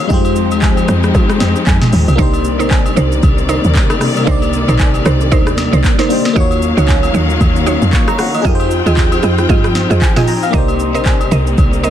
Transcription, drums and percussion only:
0.10 kick loud
0.10 shaker medium
0.25 high agogo medium
0.25 shaker medium
0.36 shaker loud
0.51 high agogo medium
0.51 shaker medium
0.62 kick medium
0.62 clap loud
0.62 low woodblock medium
0.62 shaker medium
0.77 high agogo medium
0.77 shaker soft
0.88 cross-stick medium
0.88 shaker loud
1.04 cross-stick medium
1.04 shaker medium
1.15 kick loud
1.15 high agogo medium
1.15 shaker medium
1.29 cross-stick loud
1.29 shaker medium
1.40 snare medium
1.40 high agogo medium
1.40 shaker loud
1.56 shaker medium
1.67 kick loud
1.67 clap loud
1.67 low woodblock medium
1.67 shaker medium
1.81 snare medium
1.81 mid tom loud
1.81 high agogo medium
1.81 shaker medium
1.93 open hi-hat medium
1.93 shaker medium
2.08 high agogo medium
2.08 shaker medium
2.19 kick loud
2.19 shaker medium
2.34 high agogo medium
2.34 shaker medium
2.45 shaker loud
2.60 high agogo medium
2.60 shaker medium
2.70 kick loud
2.70 clap loud
2.70 low woodblock medium
2.70 shaker medium
2.86 high agogo medium
2.86 shaker soft
2.97 shaker medium
3.12 shaker medium
3.23 kick loud
3.23 high agogo medium
3.23 shaker medium
3.38 shaker medium
3.49 high agogo medium
3.49 shaker loud
3.64 shaker medium
3.75 kick loud
3.75 clap loud
3.75 shaker medium
3.90 cross-stick medium
3.90 high agogo medium
3.90 shaker medium
4.01 cross-stick medium
4.01 open hi-hat medium
4.01 shaker loud
4.16 high agogo medium
4.16 shaker medium
4.27 kick loud
4.27 shaker medium
4.42 high agogo medium
4.42 shaker soft
4.53 shaker loud
4.69 high agogo medium
4.69 shaker medium
4.79 kick medium
4.79 clap loud
4.79 low woodblock medium
4.79 shaker medium
4.94 high agogo medium
4.94 shaker soft
5.06 cross-stick loud
5.06 shaker medium
5.21 shaker medium
5.32 kick loud
5.32 high agogo medium
5.32 shaker medium
5.47 cross-stick loud
5.47 shaker medium
5.58 snare medium
5.58 high agogo medium
5.58 shaker loud
5.73 shaker soft
5.84 kick loud
5.84 clap loud
5.84 shaker medium
5.99 snare medium
5.99 high agogo medium
5.99 shaker medium
6.10 open hi-hat medium
6.10 shaker loud
6.25 snare medium
6.25 high agogo medium
6.25 shaker medium
6.36 kick loud
6.36 shaker medium
6.51 high agogo medium
6.51 shaker soft
6.62 shaker medium
6.78 high agogo medium
6.78 shaker medium
6.88 kick loud
6.88 clap loud
6.88 low woodblock medium
6.88 shaker medium
7.03 high agogo medium
7.03 shaker soft
7.15 shaker medium
7.30 shaker medium
7.41 kick loud
7.41 high agogo medium
7.41 shaker medium
7.56 shaker medium
7.66 high agogo medium
7.66 shaker loud
7.82 shaker medium
7.93 kick loud
7.93 clap loud
7.93 shaker medium
8.08 cross-stick medium
8.08 high agogo medium
8.08 shaker medium
8.19 cross-stick loud
8.19 open hi-hat medium
8.19 shaker medium
8.34 high agogo medium
8.34 shaker medium
8.45 kick loud
8.45 shaker medium
8.60 high agogo medium
8.60 shaker soft
8.71 shaker loud
8.86 high agogo medium
8.86 shaker medium
8.97 kick medium
8.97 clap loud
8.97 shaker medium
9.12 high agogo medium
9.12 shaker soft
9.23 cross-stick loud
9.23 shaker loud
9.38 cross-stick medium
9.38 shaker medium
9.49 kick loud
9.49 high agogo medium
9.49 shaker medium
9.64 cross-stick loud
9.64 shaker medium
9.75 snare medium
9.75 high agogo medium
9.75 shaker loud
9.91 shaker medium
10.02 kick loud
10.02 clap loud
10.02 low woodblock medium
10.02 shaker medium
10.16 snare medium
10.16 mid tom loud
10.16 high agogo medium
10.16 shaker medium
10.28 open hi-hat medium
10.28 shaker medium
10.43 high agogo medium
10.43 shaker medium
10.54 kick loud
10.54 shaker medium
10.68 high agogo medium
10.68 shaker medium
10.80 shaker loud
10.95 high agogo medium
10.95 shaker medium
11.05 kick medium
11.05 clap loud
11.05 low woodblock medium
11.05 shaker medium
11.21 high agogo medium
11.21 shaker medium
11.32 shaker loud
11.47 shaker medium
11.58 kick loud
11.58 high agogo medium
11.58 shaker medium
11.73 shaker medium
11.84 high agogo medium
11.84 shaker loud

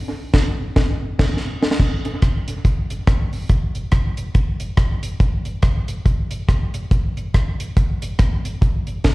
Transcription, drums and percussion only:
0.34 kick loud
0.34 snare loud
0.34 crash medium
0.76 kick loud
0.76 snare loud
1.19 kick loud
1.19 snare loud
1.19 crash medium
1.37 snare medium
1.63 snare loud
1.71 snare loud
1.80 kick loud
1.80 crash medium
2.05 closed hi-hat medium
2.22 kick loud
2.22 cross-stick loud
2.22 closed hi-hat medium
2.48 closed hi-hat loud
2.65 kick loud
2.65 closed hi-hat medium
2.90 closed hi-hat medium
3.07 kick loud
3.07 cross-stick loud
3.07 closed hi-hat medium
3.33 open hi-hat medium
3.49 kick loud
3.49 closed hi-hat medium
3.75 closed hi-hat medium
3.92 kick loud
3.92 cross-stick loud
3.92 closed hi-hat medium
4.17 closed hi-hat medium
4.35 kick loud
4.35 closed hi-hat medium
4.60 closed hi-hat medium
4.77 kick loud
4.77 cross-stick loud
4.77 closed hi-hat medium
5.03 closed hi-hat loud
5.20 kick loud
5.20 closed hi-hat medium
5.45 closed hi-hat medium
5.62 kick loud
5.62 cross-stick loud
5.62 closed hi-hat medium
5.88 closed hi-hat medium
6.06 kick loud
6.06 closed hi-hat medium
6.31 closed hi-hat medium
6.49 kick loud
6.49 cross-stick loud
6.49 closed hi-hat medium
6.74 closed hi-hat loud
6.91 kick loud
6.91 closed hi-hat medium
7.17 closed hi-hat medium
7.34 kick loud
7.34 cross-stick loud
7.34 closed hi-hat medium
7.60 closed hi-hat loud
7.77 kick loud
7.77 closed hi-hat medium
8.02 closed hi-hat medium
8.19 kick loud
8.19 cross-stick loud
8.19 closed hi-hat medium
8.45 closed hi-hat medium
8.62 kick loud
8.62 closed hi-hat medium
8.87 closed hi-hat medium
9.04 kick loud
9.04 snare loud
9.04 closed hi-hat medium

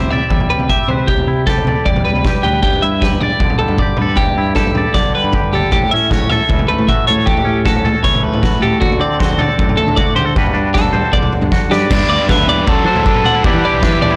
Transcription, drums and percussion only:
0.01 floor tom medium
0.11 floor tom medium
0.11 mid tom medium
0.30 kick loud
0.30 floor tom medium
0.40 mid tom medium
0.51 floor tom medium
0.60 floor tom medium
0.70 kick medium
0.70 mid tom medium
0.89 floor tom medium
0.89 mid tom medium
1.08 kick loud
1.08 floor tom medium
1.18 floor tom medium
1.47 kick medium
1.47 snare medium
1.47 floor tom medium
1.57 floor tom medium
1.67 floor tom medium
1.67 mid tom medium
1.86 kick loud
1.86 floor tom medium
1.96 floor tom medium
1.96 mid tom medium
2.06 floor tom medium
2.15 floor tom medium
2.25 kick loud
2.25 snare medium
2.25 mid tom medium
2.44 floor tom medium
2.44 mid tom medium
2.63 kick loud
2.63 floor tom medium
2.73 floor tom medium
3.02 kick medium
3.02 snare medium
3.02 floor tom medium
3.12 floor tom medium
3.21 floor tom medium
3.21 mid tom medium
3.40 kick loud
3.40 floor tom medium
3.50 mid tom medium
3.59 floor tom medium
3.68 floor tom medium
3.78 kick loud
3.78 mid tom medium
3.97 floor tom medium
3.97 mid tom medium
4.16 kick loud
4.16 floor tom medium
4.25 floor tom medium
4.55 kick loud
4.55 snare medium
4.55 floor tom medium
4.65 floor tom medium
4.75 floor tom medium
4.75 mid tom medium
4.94 kick loud
4.94 snare medium
5.33 kick loud
5.33 mid tom medium
5.53 floor tom medium
5.71 kick loud
5.71 floor tom medium
5.82 floor tom medium
6.11 kick loud
6.11 snare medium
6.11 floor tom medium
6.20 floor tom medium
6.31 floor tom medium
6.31 mid tom medium
6.49 kick loud
6.49 floor tom medium
6.59 mid tom medium
6.69 floor tom medium
6.79 floor tom medium
6.89 kick loud
6.89 mid tom medium
7.08 floor tom medium
7.08 mid tom medium
7.27 kick loud
7.27 floor tom medium
7.37 floor tom medium
7.65 kick loud
7.65 snare medium
7.65 floor tom medium
7.75 floor tom medium
7.85 floor tom medium
7.85 mid tom medium
8.04 kick loud
8.04 floor tom loud
8.14 floor tom medium
8.14 mid tom medium
8.24 floor tom medium
8.34 floor tom medium
8.43 kick loud
8.43 snare medium
8.43 mid tom medium
8.63 floor tom medium
8.63 mid tom medium
8.82 kick loud
8.82 floor tom medium
8.92 floor tom medium
9.20 kick medium
9.20 snare medium
9.20 floor tom medium
9.30 floor tom medium
9.40 floor tom medium
9.40 mid tom medium
9.59 kick loud
9.59 floor tom medium
9.69 mid tom medium
9.79 floor tom medium
9.88 floor tom medium
9.97 kick loud
9.97 mid tom medium
10.17 floor tom medium
10.17 mid tom medium
10.36 kick loud
10.36 floor tom medium
10.46 floor tom medium
10.75 kick loud
10.75 snare medium
10.75 floor tom medium
10.85 floor tom medium
10.94 floor tom medium
10.94 mid tom medium
11.13 kick loud
11.13 floor tom medium
11.23 floor tom medium
11.23 mid tom medium
11.33 floor tom medium
11.42 floor tom medium
11.52 kick loud
11.52 snare medium
11.72 snare medium
11.91 kick loud
11.91 floor tom medium
11.91 crash loud
12.29 kick loud
12.29 snare medium
12.29 floor tom medium
12.49 floor tom medium
12.67 kick loud
12.67 floor tom medium
12.95 floor tom medium
13.06 kick loud
13.15 mid tom medium
13.25 floor tom medium
13.25 mid tom medium
13.44 kick loud
13.44 floor tom medium
13.83 kick loud
13.83 snare medium
13.83 floor tom medium
14.02 floor tom loud
14.02 mid tom medium

